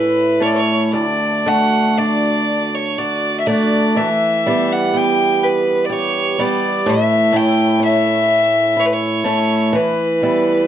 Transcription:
Already playing: steel-string acoustic guitar A2 A3 C#4 E4, fiddle B4
0.40 steel-string acoustic guitar A3 C#4 E4, fiddle C#5
0.45 fiddle D5
0.55 fiddle C#5
0.93 steel-string acoustic guitar D2, fiddle D5
1.46 steel-string acoustic guitar A3 D4 F#4, fiddle F#5
1.98 steel-string acoustic guitar D4, fiddle D5
2.75 fiddle C#5
2.98 steel-string acoustic guitar F#4, fiddle D5
3.39 fiddle E5
3.46 steel-string acoustic guitar A3 D4 F#4, fiddle D5
3.96 steel-string acoustic guitar E3, fiddle E5
4.46 steel-string acoustic guitar G3 B3 G4
4.72 fiddle F#5
4.94 steel-string acoustic guitar B3, fiddle G5
5.43 fiddle B4
5.85 fiddle D5
5.90 steel-string acoustic guitar G4, fiddle C#5
6.39 steel-string acoustic guitar G3 B3 G4, fiddle D5
6.86 steel-string acoustic guitar A2, fiddle E5
7.32 steel-string acoustic guitar A3 C#4 E4, fiddle G5
7.80 steel-string acoustic guitar C#4
7.84 fiddle E5
8.77 steel-string acoustic guitar E4, fiddle C#5
8.86 fiddle B4
8.93 fiddle C#5
9.24 steel-string acoustic guitar A3 C#4 E4
9.73 steel-string acoustic guitar E3, fiddle B4
10.22 steel-string acoustic guitar G3 B3 E4

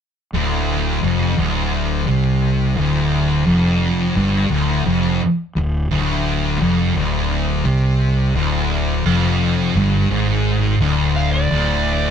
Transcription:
0.33 fingered electric bass D1, distorted electric guitar D2
1.03 fingered electric bass F1, distorted electric guitar F2
1.38 fingered electric bass D1, distorted electric guitar D2
2.08 fingered electric bass C2, distorted electric guitar C3
2.77 fingered electric bass D1, distorted electric guitar D2
3.46 fingered electric bass F1, distorted electric guitar F2
4.17 fingered electric bass G1, distorted electric guitar G2
4.50 fingered electric bass D1, distorted electric guitar D2
4.86 fingered electric bass F1, distorted electric guitar F2
5.56 fingered electric bass D1, distorted electric guitar D2
5.91 fingered electric bass D1, distorted electric guitar D2
6.61 fingered electric bass F1, distorted electric guitar F2
6.95 fingered electric bass D1, distorted electric guitar D2
7.65 fingered electric bass C2, distorted electric guitar C3
8.34 fingered electric bass D1, distorted electric guitar D2
9.06 fingered electric bass F1, distorted electric guitar F2
9.75 fingered electric bass G1, distorted electric guitar G2
10.10 fingered electric bass G#1, distorted electric guitar G#2
10.80 fingered electric bass D1, distorted electric guitar D2
11.16 lead electric guitar F5
11.32 lead electric guitar D5
11.51 fingered electric bass D1, distorted electric guitar D2

